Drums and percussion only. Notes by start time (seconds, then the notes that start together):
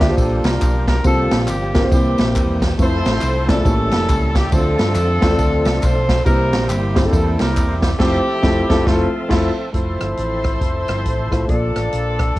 0.01 kick, snare, clap, ride, tambourine
0.18 kick, ride, tambourine
0.44 snare, ride, tambourine
0.61 kick, clap, ride, tambourine
0.88 kick, snare, ride, tambourine
1.04 kick, ride, tambourine
1.31 snare, ride, tambourine
1.48 clap, ride, tambourine
1.75 kick, snare, clap, ride, tambourine
1.92 kick, ride, tambourine
2.18 snare, ride, tambourine
2.36 kick, clap, ride, tambourine
2.62 kick, snare, ride, tambourine
2.79 kick, ride, tambourine
3.05 snare, ride, tambourine
3.21 clap, ride, tambourine
3.49 kick, snare, clap, ride, tambourine
3.65 kick, ride, tambourine
3.91 snare, ride, tambourine
4.09 kick, clap, ride, tambourine
4.35 kick, snare, ride, tambourine
4.52 kick, ride, tambourine
4.79 snare, ride, tambourine
4.95 clap, ride, tambourine
5.22 kick, snare, clap, ride, tambourine
5.39 kick, ride, tambourine
5.65 snare, ride, tambourine
5.83 kick, clap, ride, tambourine
6.09 kick, snare, ride, tambourine
6.26 kick, ride, tambourine
6.53 snare, ride, tambourine
6.70 clap, ride, tambourine
6.96 kick, snare, clap, ride, tambourine
7.13 kick, ride, tambourine
7.39 snare, ride, tambourine
7.57 kick, clap, ride, tambourine
7.82 kick, snare, ride, tambourine
8.00 kick, snare, crash
8.43 kick, snare
8.70 kick, snare
8.87 kick, snare
9.31 kick, snare, crash
9.74 kick, closed hi-hat
10.01 cross-stick, closed hi-hat
10.17 closed hi-hat
10.44 kick, cross-stick, closed hi-hat
10.61 kick, closed hi-hat
10.88 cross-stick, closed hi-hat
11.06 kick, closed hi-hat
11.32 kick, cross-stick, closed hi-hat
11.49 kick, closed hi-hat
11.76 cross-stick, closed hi-hat
11.92 closed hi-hat
12.19 kick, cross-stick, closed hi-hat